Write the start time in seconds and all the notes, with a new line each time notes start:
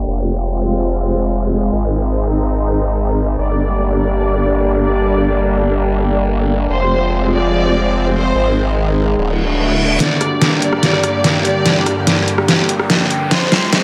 Already playing: G4 D5 G5
0.07 F1 G#3 C4 F4
0.40 C5
1.73 G#1 C4 D#4 G#4
2.12 D#5
2.29 A#5
3.38 G1 G3 A#3 D4 G4 D5
3.61 D5
4.00 D5
4.16 G5
4.83 D5
6.69 F1 F3 G#3 C4 F4 C5
7.04 C5
7.31 D5
8.14 C5
8.34 G#1 D#3 G#3 G#4
8.53 D#5
8.72 A#5
9.17 D1 D3 A3 B3 D4 F#4, reverse cymbal
9.31 A4 E5
10.00 G2 D3 A#3 G4 D5, snare, closed hi-hat, riser
10.11 D5 G5
10.21 cross-stick, closed hi-hat
10.42 snare, closed hi-hat
10.62 D5, closed hi-hat
10.73 cross-stick
10.83 snare, closed hi-hat
10.93 cross-stick
11.04 cross-stick, closed hi-hat
11.24 snare, closed hi-hat
11.45 D5, closed hi-hat
11.66 snare, closed hi-hat
11.86 cross-stick, closed hi-hat
12.07 snare, closed hi-hat
12.28 closed hi-hat
12.38 cross-stick
12.48 snare, closed hi-hat
12.69 closed hi-hat
12.79 cross-stick
12.90 snare, closed hi-hat
13.11 closed hi-hat
13.31 F2 F3 G#3 C4 F4 C5, snare, closed hi-hat
13.45 C5
13.52 snare, closed hi-hat
13.73 snare, closed hi-hat